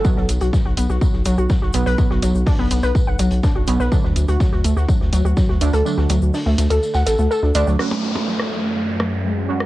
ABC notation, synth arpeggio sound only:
X:1
M:4/4
L:1/16
Q:1/4=124
K:F#m
V:1 name="Synth arpeggio sound"
F, F, z F F, F B, F F, z F, F F, F B, B | F, F F, z D B, B, B z f F, z D F B, B | F, F, z F F, F A, F F, z F, F F, F A, A | F, F F, z D A, A, A z f A A, A D d F, |
F, F, z F F, F A, F F, z F, F F, F A, A |]